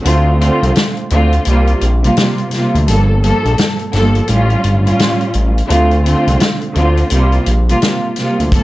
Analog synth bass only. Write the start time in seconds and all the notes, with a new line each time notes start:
0.05 D2
0.62 C2
1.11 D2
1.47 C2
1.82 A#1
2.74 D2
2.88 G1
3.45 A#1
3.94 G1
4.29 A1
4.64 G1
5.35 A1
5.70 D2
6.27 C2
6.76 D2
7.11 C2
7.47 A#1
8.39 D2
8.52 G1